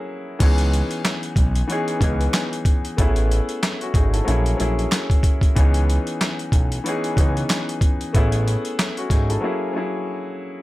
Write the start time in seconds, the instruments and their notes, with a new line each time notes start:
Already playing: upright piano F#3 A#3 C#4 E4 G#4
0.39 analog synth bass C#2, upright piano E3 B3 C#4 D#4, kick, closed hi-hat, crash
0.44 upright piano G#4
0.58 closed hi-hat
0.73 closed hi-hat
0.91 closed hi-hat
1.05 finger snap, snare, clap, closed hi-hat
1.23 closed hi-hat
1.36 analog synth bass B1, kick, closed hi-hat
1.55 closed hi-hat
1.67 upright piano E3 B3 C#4 D#4, closed hi-hat
1.72 upright piano G#4
1.88 closed hi-hat
1.99 analog synth bass C#2, upright piano E3 B3 C#4 D#4, kick, closed hi-hat
2.04 upright piano G#4
2.21 closed hi-hat
2.33 finger snap, snare, clap, closed hi-hat
2.53 closed hi-hat
2.65 kick, closed hi-hat
2.85 closed hi-hat
2.97 analog synth bass A1, upright piano A3 B3 C#4 E4, kick, closed hi-hat
3.01 upright piano G#4
3.16 closed hi-hat
3.31 closed hi-hat
3.49 closed hi-hat
3.63 finger snap, snare, clap, closed hi-hat
3.81 upright piano C#4 F#4, closed hi-hat
3.94 analog synth bass G#1, upright piano D#4 G#4, kick, closed hi-hat
4.13 upright piano E4 A4, closed hi-hat
4.24 analog synth bass A#1, upright piano F#3 A#3 C#4 E4, closed hi-hat
4.29 upright piano G#4
4.46 closed hi-hat
4.57 analog synth bass A#1, upright piano F#3 A#3 C#4 E4, closed hi-hat
4.62 upright piano G#4
4.79 closed hi-hat
4.91 finger snap, snare, clap, closed hi-hat
5.10 kick, closed hi-hat
5.23 kick, closed hi-hat
5.41 kick, closed hi-hat
5.55 analog synth bass C#2, upright piano E3 B3 C#4 D#4, kick, closed hi-hat
5.60 upright piano G#4
5.74 closed hi-hat
5.90 closed hi-hat
6.07 closed hi-hat
6.21 finger snap, snare, clap, closed hi-hat
6.39 closed hi-hat
6.52 analog synth bass B1, kick, closed hi-hat
6.72 closed hi-hat
6.84 upright piano E3 B3 C#4 D#4, closed hi-hat
6.88 upright piano G#4
7.04 closed hi-hat
7.15 analog synth bass C#2, upright piano E3 B3 C#4 D#4, kick, closed hi-hat
7.20 upright piano G#4
7.37 closed hi-hat
7.49 finger snap, snare, clap, closed hi-hat
7.69 closed hi-hat
7.81 kick, closed hi-hat
8.01 closed hi-hat
8.13 analog synth bass A1, upright piano A3 B3 C#4 E4, kick, closed hi-hat
8.17 upright piano G#4
8.32 closed hi-hat
8.48 closed hi-hat
8.65 closed hi-hat
8.79 finger snap, snare, clap, closed hi-hat
8.97 upright piano C#4 F#4, closed hi-hat
9.10 analog synth bass G#1, upright piano D#4 G#4, kick, snare, closed hi-hat
9.29 upright piano E4 A4, closed hi-hat
9.40 upright piano F#3 A#3 C#4 E4
9.45 upright piano G#4
9.73 upright piano F#3 A#3 C#4 E4
9.77 upright piano G#4